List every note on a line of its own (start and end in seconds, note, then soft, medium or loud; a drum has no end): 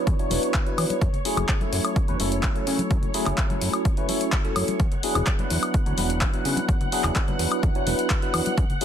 0.00 0.16 F#3 medium
0.00 0.16 B3 medium
0.00 0.16 D4 medium
0.00 0.16 E4 medium
0.00 0.17 B4 medium
0.00 4.81 C#5 medium
0.00 4.81 C#6 medium
0.07 0.15 E2 loud
0.07 kick loud
0.07 closed hi-hat medium
0.19 0.28 E1 soft
0.19 0.28 F#3 medium
0.19 0.28 B3 medium
0.19 0.28 D4 medium
0.19 0.29 E4 medium
0.19 0.29 C#5 loud
0.19 closed hi-hat soft
0.19 tambourine soft
0.30 0.38 E1 loud
0.30 0.63 F#3 medium
0.30 0.63 B3 medium
0.30 0.63 D4 medium
0.30 0.64 E4 medium
0.30 0.64 B4 medium
0.30 open hi-hat loud
0.30 high conga medium
0.42 closed hi-hat medium
0.42 tambourine medium
0.54 kick loud
0.54 clap loud
0.54 closed hi-hat medium
0.66 1.00 F#3 medium
0.66 1.00 B3 medium
0.66 1.00 D4 medium
0.66 1.00 E4 medium
0.66 1.00 B4 medium
0.66 closed hi-hat soft
0.78 0.85 E2 medium
0.78 open hi-hat loud
0.78 high woodblock medium
0.90 closed hi-hat medium
0.90 tambourine medium
0.90 high conga loud
1.01 1.09 F#2 loud
1.01 kick loud
1.01 closed hi-hat soft
1.13 closed hi-hat soft
1.13 tambourine soft
1.13 low conga medium
1.25 1.58 F#3 loud
1.25 1.58 A3 medium
1.25 1.58 C#4 medium
1.25 1.58 E4 medium
1.25 1.58 G#4 loud
1.25 open hi-hat loud
1.37 1.45 F#1 medium
1.37 closed hi-hat medium
1.37 tambourine medium
1.37 low conga loud
1.37 high woodblock medium
1.49 kick loud
1.49 clap loud
1.49 closed hi-hat medium
1.61 2.05 F#3 medium
1.61 2.05 A3 medium
1.61 2.05 C#4 medium
1.61 2.05 E4 medium
1.61 2.06 A4 medium
1.61 closed hi-hat soft
1.61 tambourine soft
1.61 high conga medium
1.61 low conga medium
1.73 1.80 F#2 medium
1.73 open hi-hat loud
1.84 closed hi-hat soft
1.84 tambourine medium
1.84 high woodblock medium
1.96 2.06 E2 soft
1.96 kick loud
1.96 closed hi-hat medium
2.08 2.15 E2 medium
2.08 2.17 F#3 medium
2.08 2.17 A3 medium
2.08 2.17 C#4 medium
2.08 2.18 E4 medium
2.08 2.18 B4 loud
2.08 closed hi-hat soft
2.20 2.48 F#1 loud
2.20 2.52 F#3 medium
2.20 2.53 A3 medium
2.20 2.53 C#4 medium
2.20 2.53 E4 medium
2.20 2.53 A4 medium
2.20 open hi-hat loud
2.20 high conga medium
2.32 closed hi-hat soft
2.32 tambourine medium
2.43 kick loud
2.43 clap loud
2.43 closed hi-hat medium
2.55 3.11 F#3 medium
2.55 3.11 A3 medium
2.55 3.12 C#4 medium
2.55 3.12 E4 medium
2.55 3.12 A4 medium
2.55 closed hi-hat soft
2.55 tambourine soft
2.67 2.82 C#3 medium
2.67 open hi-hat loud
2.79 closed hi-hat soft
2.79 tambourine medium
2.79 high conga loud
2.91 2.98 F#2 loud
2.91 kick loud
2.91 closed hi-hat soft
3.02 closed hi-hat soft
3.02 tambourine soft
3.02 low conga medium
3.14 3.47 F#3 medium
3.14 3.47 A3 loud
3.14 3.47 C#4 medium
3.14 3.47 E4 medium
3.14 3.47 G#4 loud
3.14 open hi-hat loud
3.26 3.33 F#1 medium
3.26 clap soft
3.26 closed hi-hat medium
3.26 tambourine medium
3.26 low conga medium
3.26 high woodblock medium
3.38 kick loud
3.38 clap loud
3.38 closed hi-hat soft
3.49 3.94 F#3 medium
3.49 3.94 A3 medium
3.49 3.94 C#4 medium
3.49 3.94 E4 medium
3.49 3.94 A4 medium
3.49 closed hi-hat soft
3.49 tambourine soft
3.49 high conga medium
3.49 low conga medium
3.62 3.69 F#2 medium
3.62 open hi-hat loud
3.73 closed hi-hat soft
3.73 tambourine medium
3.73 high woodblock medium
3.85 kick loud
3.85 closed hi-hat medium
3.97 4.06 F#3 medium
3.97 4.06 A3 medium
3.97 4.07 C#4 medium
3.97 4.07 E4 medium
3.97 4.07 B4 loud
3.97 closed hi-hat soft
4.09 4.41 F#3 medium
4.09 4.42 A3 medium
4.09 4.42 C#4 medium
4.09 4.42 E4 medium
4.09 4.42 A4 medium
4.09 open hi-hat loud
4.09 high conga medium
4.20 closed hi-hat soft
4.20 tambourine medium
4.32 kick loud
4.32 clap loud
4.32 closed hi-hat medium
4.44 4.78 F#3 medium
4.44 4.78 A3 medium
4.44 4.78 C#4 medium
4.44 4.78 E4 medium
4.44 4.78 A4 medium
4.44 closed hi-hat soft
4.44 tambourine soft
4.56 4.64 F#2 medium
4.56 open hi-hat loud
4.56 high woodblock medium
4.68 closed hi-hat medium
4.68 tambourine medium
4.68 high conga medium
4.80 4.87 E2 loud
4.80 8.85 F#5 medium
4.80 8.85 F#6 medium
4.80 kick loud
4.80 closed hi-hat soft
4.92 closed hi-hat soft
4.92 tambourine soft
4.92 low conga loud
5.03 5.36 F#3 loud
5.03 5.36 B3 medium
5.03 5.36 D4 medium
5.03 5.36 E4 medium
5.03 5.36 G#4 loud
5.03 open hi-hat loud
5.15 5.22 E1 medium
5.15 closed hi-hat medium
5.15 tambourine medium
5.15 low conga medium
5.15 high woodblock medium
5.27 kick loud
5.27 clap loud
5.27 closed hi-hat medium
5.39 5.83 F#3 medium
5.39 5.83 B3 medium
5.39 5.83 D4 medium
5.39 5.84 E4 medium
5.39 5.84 B4 medium
5.39 closed hi-hat soft
5.39 tambourine soft
5.39 high conga medium
5.39 low conga medium
5.50 5.58 E2 medium
5.50 open hi-hat loud
5.63 closed hi-hat medium
5.63 tambourine medium
5.63 high woodblock medium
5.74 5.84 D2 soft
5.74 kick loud
5.74 closed hi-hat medium
5.86 5.93 D2 medium
5.86 5.95 F#3 medium
5.86 5.95 B3 medium
5.86 5.95 D4 medium
5.86 5.96 E4 medium
5.86 5.96 C#5 loud
5.86 closed hi-hat soft
5.86 tambourine soft
5.97 6.26 E1 loud
5.97 6.30 F#3 medium
5.97 6.30 B3 medium
5.97 6.31 D4 medium
5.97 6.31 E4 medium
5.97 6.31 B4 medium
5.97 open hi-hat loud
5.97 high conga medium
6.09 closed hi-hat soft
6.09 tambourine medium
6.21 kick loud
6.21 clap loud
6.21 closed hi-hat medium
6.33 6.89 F#3 medium
6.33 6.89 B3 medium
6.33 6.90 D4 medium
6.33 6.90 E4 medium
6.33 6.90 B4 medium
6.33 closed hi-hat soft
6.33 tambourine soft
6.45 6.60 C#3 medium
6.45 open hi-hat loud
6.56 closed hi-hat soft
6.56 tambourine medium
6.56 high conga medium
6.69 6.76 E2 loud
6.69 kick loud
6.69 closed hi-hat medium
6.81 closed hi-hat soft
6.81 tambourine soft
6.81 low conga medium
6.92 7.25 F#3 loud
6.92 7.25 B3 medium
6.92 7.25 D4 medium
6.92 7.25 E4 medium
6.92 7.25 G#4 loud
6.92 open hi-hat loud
7.04 7.11 E1 medium
7.04 clap soft
7.04 closed hi-hat medium
7.04 tambourine medium
7.04 low conga medium
7.04 high woodblock medium
7.15 kick loud
7.15 clap loud
7.15 closed hi-hat medium
7.15 tambourine medium
7.28 7.72 F#3 medium
7.28 7.72 B3 medium
7.28 7.72 D4 medium
7.28 7.72 E4 medium
7.28 7.73 B4 medium
7.28 closed hi-hat soft
7.28 tambourine soft
7.28 high conga medium
7.28 low conga medium
7.39 7.47 E2 medium
7.39 open hi-hat loud
7.52 closed hi-hat soft
7.52 tambourine medium
7.52 high woodblock medium
7.63 7.71 E2 loud
7.63 kick loud
7.63 closed hi-hat medium
7.75 7.84 E1 soft
7.75 7.84 F#3 medium
7.75 7.84 B3 medium
7.75 7.85 D4 medium
7.75 7.85 E4 medium
7.75 7.85 C#5 loud
7.75 closed hi-hat soft
7.75 tambourine soft
7.87 7.94 E1 loud
7.87 8.19 F#3 medium
7.87 8.20 B3 medium
7.87 8.20 D4 medium
7.87 8.20 E4 medium
7.87 8.20 B4 medium
7.87 open hi-hat loud
7.87 high conga medium
7.99 closed hi-hat medium
7.99 tambourine medium
8.10 kick loud
8.10 clap loud
8.10 closed hi-hat medium
8.22 8.56 F#3 medium
8.22 8.56 B3 medium
8.22 8.56 D4 medium
8.22 8.56 E4 medium
8.22 8.56 B4 medium
8.22 closed hi-hat soft
8.22 tambourine soft
8.34 8.41 E2 medium
8.34 open hi-hat loud
8.34 high woodblock medium
8.46 closed hi-hat medium
8.46 tambourine medium
8.46 high conga medium
8.58 8.65 F#2 loud
8.58 kick loud
8.58 closed hi-hat soft
8.70 closed hi-hat soft
8.70 tambourine soft
8.70 low conga medium
8.81 8.85 F#3 loud
8.81 8.85 A3 medium
8.81 8.85 C#4 loud
8.81 8.85 E4 loud
8.81 8.85 G#4 loud
8.81 open hi-hat loud